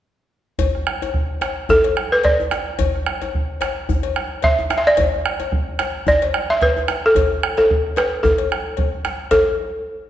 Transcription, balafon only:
0, 0, Header, 1, 2, 480
1, 0, Start_track
1, 0, Tempo, 548446
1, 511, Time_signature, 4, 2, 24, 8
1, 4829, Tempo, 540541
1, 8896, End_track
2, 0, Start_track
2, 0, Title_t, "Balafon"
2, 0, Program_c, 0, 12
2, 1488, Note_on_c, 0, 69, 85
2, 1858, Note_on_c, 0, 71, 89
2, 1869, Note_off_c, 0, 69, 0
2, 1952, Note_off_c, 0, 71, 0
2, 1965, Note_on_c, 0, 74, 85
2, 2311, Note_off_c, 0, 74, 0
2, 3885, Note_on_c, 0, 76, 96
2, 4165, Note_off_c, 0, 76, 0
2, 4180, Note_on_c, 0, 76, 68
2, 4249, Note_off_c, 0, 76, 0
2, 4263, Note_on_c, 0, 74, 84
2, 5318, Note_off_c, 0, 74, 0
2, 5328, Note_on_c, 0, 74, 93
2, 5674, Note_off_c, 0, 74, 0
2, 5703, Note_on_c, 0, 76, 92
2, 5796, Note_off_c, 0, 76, 0
2, 5812, Note_on_c, 0, 71, 87
2, 6193, Note_off_c, 0, 71, 0
2, 6197, Note_on_c, 0, 69, 69
2, 6648, Note_off_c, 0, 69, 0
2, 6659, Note_on_c, 0, 69, 74
2, 7009, Note_on_c, 0, 71, 78
2, 7013, Note_off_c, 0, 69, 0
2, 7238, Note_on_c, 0, 69, 69
2, 7252, Note_off_c, 0, 71, 0
2, 7922, Note_off_c, 0, 69, 0
2, 8197, Note_on_c, 0, 69, 81
2, 8419, Note_off_c, 0, 69, 0
2, 8896, End_track
0, 0, End_of_file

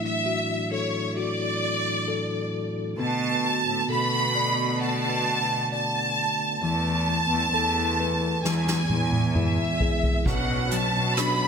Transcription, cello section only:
0, 0, Header, 1, 2, 480
1, 0, Start_track
1, 0, Tempo, 909091
1, 1577, Time_signature, 4, 2, 24, 8
1, 6060, End_track
2, 0, Start_track
2, 0, Title_t, "Cello section"
2, 0, Program_c, 0, 48
2, 1576, Note_on_c, 0, 47, 78
2, 1915, Note_off_c, 0, 47, 0
2, 1937, Note_on_c, 0, 45, 61
2, 2049, Note_off_c, 0, 45, 0
2, 2057, Note_on_c, 0, 47, 86
2, 3236, Note_off_c, 0, 47, 0
2, 3494, Note_on_c, 0, 40, 71
2, 3834, Note_off_c, 0, 40, 0
2, 3857, Note_on_c, 0, 40, 69
2, 3968, Note_off_c, 0, 40, 0
2, 3974, Note_on_c, 0, 40, 78
2, 4434, Note_off_c, 0, 40, 0
2, 4458, Note_on_c, 0, 40, 76
2, 4681, Note_off_c, 0, 40, 0
2, 4694, Note_on_c, 0, 40, 69
2, 5154, Note_off_c, 0, 40, 0
2, 5416, Note_on_c, 0, 47, 71
2, 5755, Note_off_c, 0, 47, 0
2, 5776, Note_on_c, 0, 47, 71
2, 6060, Note_off_c, 0, 47, 0
2, 6060, End_track
0, 0, End_of_file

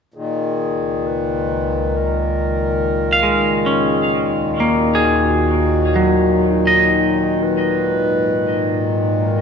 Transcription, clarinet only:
0, 0, Header, 1, 2, 480
1, 0, Start_track
1, 0, Tempo, 909091
1, 68, Time_signature, 4, 2, 24, 8
1, 4971, End_track
2, 0, Start_track
2, 0, Title_t, "Clarinet"
2, 0, Program_c, 0, 71
2, 78, Note_on_c, 0, 68, 86
2, 563, Note_on_c, 0, 71, 89
2, 571, Note_off_c, 0, 68, 0
2, 1035, Note_on_c, 0, 70, 96
2, 1043, Note_off_c, 0, 71, 0
2, 1991, Note_off_c, 0, 70, 0
2, 2000, Note_on_c, 0, 68, 79
2, 2310, Note_off_c, 0, 68, 0
2, 2486, Note_on_c, 0, 66, 94
2, 3434, Note_on_c, 0, 63, 78
2, 3441, Note_off_c, 0, 66, 0
2, 3923, Note_on_c, 0, 71, 97
2, 3931, Note_off_c, 0, 63, 0
2, 4733, Note_off_c, 0, 71, 0
2, 4871, Note_on_c, 0, 70, 89
2, 4971, Note_off_c, 0, 70, 0
2, 4971, End_track
0, 0, End_of_file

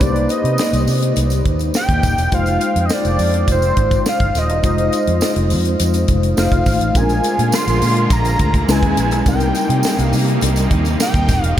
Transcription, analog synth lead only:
0, 0, Header, 1, 2, 480
1, 0, Start_track
1, 0, Tempo, 578035
1, 10, Time_signature, 4, 2, 24, 8
1, 9631, End_track
2, 0, Start_track
2, 0, Title_t, "Analog synth lead"
2, 0, Program_c, 0, 81
2, 11, Note_on_c, 0, 74, 88
2, 249, Note_on_c, 0, 75, 86
2, 261, Note_off_c, 0, 74, 0
2, 969, Note_off_c, 0, 75, 0
2, 1465, Note_on_c, 0, 79, 112
2, 1944, Note_on_c, 0, 77, 104
2, 1956, Note_off_c, 0, 79, 0
2, 2367, Note_on_c, 0, 75, 69
2, 2380, Note_off_c, 0, 77, 0
2, 2432, Note_on_c, 0, 74, 95
2, 2444, Note_off_c, 0, 75, 0
2, 2901, Note_off_c, 0, 74, 0
2, 2921, Note_on_c, 0, 72, 92
2, 3353, Note_off_c, 0, 72, 0
2, 3397, Note_on_c, 0, 77, 96
2, 3638, Note_on_c, 0, 75, 88
2, 3651, Note_off_c, 0, 77, 0
2, 3864, Note_off_c, 0, 75, 0
2, 3871, Note_on_c, 0, 75, 85
2, 4547, Note_off_c, 0, 75, 0
2, 5301, Note_on_c, 0, 77, 87
2, 5785, Note_on_c, 0, 80, 97
2, 5798, Note_off_c, 0, 77, 0
2, 6264, Note_on_c, 0, 84, 108
2, 6276, Note_off_c, 0, 80, 0
2, 6737, Note_off_c, 0, 84, 0
2, 6748, Note_on_c, 0, 82, 106
2, 7232, Note_on_c, 0, 80, 98
2, 7244, Note_off_c, 0, 82, 0
2, 7702, Note_off_c, 0, 80, 0
2, 7709, Note_on_c, 0, 79, 93
2, 8340, Note_off_c, 0, 79, 0
2, 8340, Note_on_c, 0, 77, 93
2, 8628, Note_off_c, 0, 77, 0
2, 9153, Note_on_c, 0, 79, 109
2, 9494, Note_off_c, 0, 79, 0
2, 9494, Note_on_c, 0, 77, 109
2, 9591, Note_off_c, 0, 77, 0
2, 9631, End_track
0, 0, End_of_file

